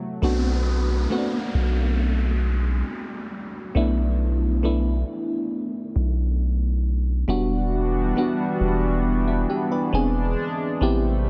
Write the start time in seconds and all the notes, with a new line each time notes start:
Already playing: C3 F#3 A3
0.22 B1 A3 B3 D4 F#4, downlifter
1.10 A3 B3 C4 F#4
1.18 D4
1.55 B1
3.75 B1 A3 B3 D4 E4
4.63 A3 B3 D4 E4
5.96 B1
7.28 E1 E3 G3 B3 D4 F#4
8.16 G3 B3 D4 F#4
8.61 E1
9.28 G3 E4
9.50 B3 G4
9.72 D4 B4
9.93 E1 G#3 B3 C4 D4 G#4
10.81 A1 C3 G3 A3 B3 C4 E4 G4